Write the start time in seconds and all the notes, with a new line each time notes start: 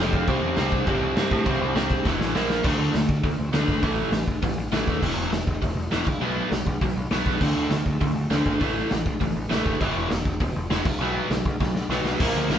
Already playing: F1 F2
0.00 C3 F3
0.13 kick
0.27 C2 C3 G3 C4, kick, crash
0.43 E2
0.57 C2 C3 G3 C4, snare, crash
0.72 kick
0.87 G1 C3 G3 C4, kick, crash
1.01 C2
1.15 G2 C3 G3 C4, snare, crash
1.31 A2, kick
1.45 C2 C3 G3 C4, kick, crash
1.61 C2
1.75 C2 C3 G3 C4, snare, crash
1.91 kick
2.05 E1 E2 B2 E3, kick, snare
2.20 A1, snare
2.35 A#1 A#2 F3 A#3, snare
2.50 snare
2.64 D2 D3 A3 D4, kick, crash
2.79 D2
2.94 D2 D3 A3, snare, open hi-hat
3.09 D2, kick
3.23 D2 D3 A3, kick, open hi-hat
3.38 D2
3.52 D2 D3 A3 D4, snare, open hi-hat
3.68 G1, kick
3.83 A1 A2 E3 A3, kick, open hi-hat
4.12 A1 A2 E3, snare, open hi-hat
4.27 A1, kick
4.43 A1 A2 E3, kick, open hi-hat
4.57 A1
4.72 A1 A2 E3 A3, snare, open hi-hat
4.87 D#2, kick
5.02 E1 E2 B2 E3, kick, crash
5.17 E1
5.31 E1 E2 B2, snare, open hi-hat
5.47 E1, kick
5.62 E1 E2 B2, kick, open hi-hat
5.76 E1
5.91 E1 E2 B2 E3, snare, open hi-hat
6.07 B1, kick, crash
6.21 B1 B2 F#3 B3
6.51 B1 B2 F#3, snare, open hi-hat
6.67 B1, kick
6.81 B1 B2 F#3, kick, open hi-hat
6.97 B1
7.11 B1 B2 F#3 B3, snare, open hi-hat
7.26 B1, kick
7.41 D2 D3 A3 D4, kick, crash
7.56 D2
7.70 D2 D3 A3, snare, open hi-hat
7.86 D2, kick
8.01 D2 D3 A3, kick, open hi-hat
8.15 D2
8.31 D2 D3 A3 D4, snare, open hi-hat
8.46 G#1, kick
8.61 A1 A2 E3 A3, kick, open hi-hat
8.91 A1 A2 E3, snare, open hi-hat
9.06 A1, kick
9.21 A1 A2 E3, kick, open hi-hat
9.36 A1
9.50 A1 A2 E3 A3, snare, open hi-hat
9.66 F#1, kick
9.81 E1 E2 B2 E3, kick, crash
9.96 E1
10.10 E1 E2 B2, snare, open hi-hat
10.25 E1, kick
10.40 E1 E2 B2, kick, open hi-hat
10.55 E1
10.70 E1 E2 B2 E3, snare, open hi-hat
10.85 B1, kick, crash
10.98 B1 B2 F#3 B3
11.30 B1 B2 F#3, snare, open hi-hat
11.45 B1, kick
11.60 B1 B2 F#3, kick, snare
11.74 B1, snare
11.89 B1 B2 F#3 B3, snare
12.04 B1, snare
12.20 A#1 A#2 F3 A#3, kick, crash
12.35 D2
12.49 A#1 A#2 F3 A#3, snare, crash